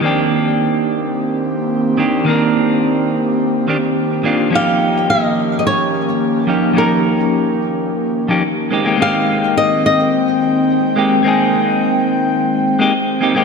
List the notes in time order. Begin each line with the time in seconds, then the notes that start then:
Already playing: D#3
0.01 D#3 A#3 C4 D4 G4
0.06 G4
1.97 D#3 A#3 C4 D4 G4
2.25 D#3 A#3 C4 D4
2.30 A#4
3.68 D#3 A#3 C4 D4 G4
4.23 D#3 A#3 C4 D4 F4
4.50 F3 A#3 C#4 D#4
4.55 G4 F5
5.10 D#5
5.59 D#5
5.67 C#5
6.47 F3 A#3 C#4 D#4 G4
6.73 F3 A#3 C#4 D#4
6.78 A#4
8.28 F3 A#3 C#4 D#4 G4
8.71 G#3 A#3 C4 D#4 G4 G5
8.85 G#3 A#3 C4 D#4 G4
8.96 G#3 A#3 C4
9.01 D#4 G4 F5
9.57 D#5
9.86 D#5
10.96 G#3 A#3 C4 D#4 G4
11.23 G#3 A#3 C4 D#4
11.28 G#4
12.79 G#3 A#3 C4 D#4 G4
13.21 G#3 A#3 C4 D#4 G4
13.35 G#3 A#3 C4 D#4 G4